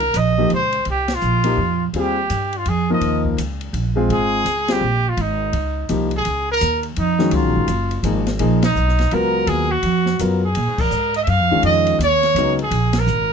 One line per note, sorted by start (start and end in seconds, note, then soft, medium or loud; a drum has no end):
0.00 0.13 C2 medium
0.00 0.19 A#4 medium
0.00 ride soft
0.14 0.49 A#1 medium
0.14 0.52 D#5 loud
0.14 hi-hat pedal medium
0.14 ride medium
0.38 0.50 F3 medium
0.38 0.50 A#3 medium
0.38 0.50 D#4 medium
0.38 0.50 G4 medium
0.50 0.85 C#2 medium
0.50 0.86 C5 loud
0.50 ride soft
0.73 ride soft
0.85 1.21 C2 medium
0.85 ride medium
0.90 1.16 G4 medium
1.08 snare medium
1.08 ride medium
1.14 1.84 F4 medium
1.21 1.57 A#1 medium
1.21 hi-hat pedal soft
1.44 1.57 F3 medium
1.44 1.57 A#3 medium
1.44 1.57 D#4 medium
1.44 1.57 G4 medium
1.44 ride medium
1.57 1.93 F2 medium
1.93 2.29 D#2 medium
1.93 2.16 G3 medium
1.93 2.16 C4 medium
1.93 2.15 F4 medium
1.93 2.16 G#4 medium
1.93 ride medium
1.99 2.59 G4 medium
2.30 2.65 G2 medium
2.30 hi-hat pedal medium
2.30 ride medium
2.53 ride soft
2.58 2.70 F4 medium
2.66 3.00 F2 medium
2.66 2.90 G#4 medium
2.66 ride medium
2.90 3.36 F3 medium
2.90 3.36 A#3 medium
2.90 3.36 D#4 medium
2.90 3.36 A#4 medium
2.90 3.24 D#5 medium
3.01 3.36 D#2 medium
3.01 ride medium
3.25 kick soft
3.37 3.72 C#2 medium
3.37 hi-hat pedal medium
3.37 ride medium
3.61 ride soft
3.73 4.08 A#1 medium
3.73 ride medium
3.96 4.43 G#3 medium
3.96 4.43 C4 medium
3.96 4.43 F4 medium
3.96 4.43 G#4 medium
4.09 4.44 G#1 medium
4.09 4.73 G#4 loud
4.09 ride medium
4.45 4.80 C#2 medium
4.45 hi-hat pedal soft
4.45 ride medium
4.68 4.81 G3 medium
4.68 4.81 C4 medium
4.68 4.81 F4 medium
4.68 5.10 G4 medium
4.68 4.81 G#4 medium
4.68 snare medium
4.68 ride medium
4.81 5.16 A#1 medium
5.09 5.23 F4 medium
5.17 5.52 G#1 medium
5.17 5.91 D#4 medium
5.17 ride medium
5.53 5.88 C#2 medium
5.53 ride medium
5.89 6.24 C2 medium
5.89 6.10 F3 medium
5.89 6.10 A#3 soft
5.89 6.10 D#4 medium
5.89 6.10 G4 medium
5.89 hi-hat pedal medium
5.89 ride medium
6.11 ride soft
6.16 6.48 G#4 medium
6.25 6.60 C#2 medium
6.25 ride medium
6.51 6.83 A#4 loud
6.61 6.96 D#2 medium
6.61 hi-hat pedal medium
6.61 ride medium
6.83 ride soft
6.96 7.31 F2 medium
6.96 7.36 D#4 medium
6.96 ride medium
7.19 7.66 D#3 medium
7.19 7.66 F#3 medium
7.19 7.66 G#3 medium
7.19 7.66 C#4 medium
7.19 snare medium
7.31 7.44 C#2 medium
7.31 8.06 F4 medium
7.31 ride medium
7.44 7.55 A#1 medium
7.55 7.67 G#1 medium
7.68 8.02 F#1 medium
7.68 hi-hat pedal medium
7.68 ride medium
7.91 ride soft
8.03 8.39 G#1 medium
8.03 8.25 F3 medium
8.03 8.25 A#3 soft
8.03 8.25 D#4 soft
8.03 8.25 G#4 medium
8.03 hi-hat pedal soft
8.03 ride medium
8.27 snare medium
8.27 ride soft
8.39 8.75 A#1 medium
8.39 8.61 F3 medium
8.39 8.61 A#3 medium
8.39 8.61 D#4 medium
8.39 8.61 G#4 medium
8.39 ride medium
8.63 9.16 D#4 medium
8.63 snare medium
8.63 ride medium
8.75 9.11 B1 medium
8.75 hi-hat pedal soft
8.88 snare soft
8.99 snare soft
8.99 ride soft
9.11 9.46 C#2 medium
9.11 9.66 F#3 medium
9.11 9.66 B3 medium
9.11 9.66 F4 medium
9.11 9.67 A#4 medium
9.11 9.49 A#4 medium
9.11 ride soft
9.47 9.82 D#2 medium
9.47 9.73 G#4 loud
9.47 ride medium
9.71 10.20 F#4 medium
9.83 10.18 F2 medium
9.83 ride medium
10.06 snare soft
10.19 10.55 F#2 medium
10.19 10.40 F#3 medium
10.19 10.41 B3 medium
10.19 10.41 F4 medium
10.19 10.41 A#4 medium
10.19 hi-hat pedal soft
10.19 ride medium
10.45 10.82 G#4 medium
10.55 10.67 A#2 medium
10.55 ride medium
10.67 10.79 G#2 medium
10.78 10.90 F2 medium
10.78 11.15 A#4 loud
10.78 kick medium
10.78 crash medium
10.91 11.26 G#2 medium
10.91 hi-hat pedal medium
11.14 11.22 D#5 medium
11.14 ride soft
11.23 11.30 E5 medium
11.27 11.39 F#2 medium
11.27 11.64 F5 loud
11.27 ride medium
11.39 11.52 F2 medium
11.51 11.62 C#2 medium
11.51 11.97 D#3 medium
11.51 11.98 G#3 medium
11.51 11.98 C#4 medium
11.51 11.98 F4 medium
11.62 11.98 F2 medium
11.62 11.98 D#5 loud
11.62 ride medium
11.87 ride soft
11.99 12.34 D#2 medium
11.99 hi-hat pedal medium
11.99 ride medium
12.03 12.56 C#5 loud
12.23 snare soft
12.23 ride soft
12.35 12.70 C#2 medium
12.35 12.57 C#3 medium
12.35 12.57 F#3 medium
12.35 12.57 B3 medium
12.35 12.57 D#4 medium
12.35 hi-hat pedal medium
12.35 ride medium
12.59 13.00 G#4 medium
12.59 ride soft
12.71 13.06 A#1 medium
12.71 ride medium
12.93 snare medium
12.93 ride medium
12.99 13.33 A#4 loud
13.06 13.33 G#1 medium
13.06 hi-hat pedal medium